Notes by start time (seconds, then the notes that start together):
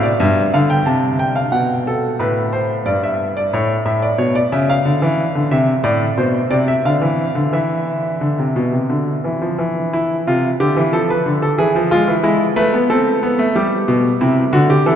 0.03 D5
0.20 G2 E5
0.54 D3 F5
0.70 G5
0.86 C3 A5
1.19 G5
1.36 F5
1.52 B2 F#5
1.87 A4
2.19 A2 B4
2.53 C5
2.86 G2 D5
3.04 E5
3.37 D5
3.53 A2 C#5
3.85 A2 E5
4.02 D5
4.18 B2 C#5
4.35 D5
4.52 C#3 E5
4.70 F5
4.85 D3
5.02 E3
5.35 D3
5.51 C3 E5
5.84 A2 D5
6.18 B2 C5
6.50 C3 D5
6.68 E5
6.85 D3 F5
7.02 E3
7.35 D3
7.53 E3 E5
8.21 D3
8.39 C3
8.56 B2
8.72 C3
8.90 D3
9.24 E3
9.42 F3
9.59 E3
9.93 E4
10.27 C3 F4
10.60 D3 G4
10.77 E3
10.93 F3 A4
11.10 B4
11.26 D3
11.42 A4
11.58 E3 G#4
11.75 F3
11.91 G#3 F4
12.08 E3
12.23 G#3 E4
12.56 A3 B4
12.74 B3
12.90 C4 A4
13.23 B3
13.39 A3
13.55 G3 G4
13.88 B2
14.21 C3 E4
14.53 D3 F#4
14.70 G4
14.86 E3 A4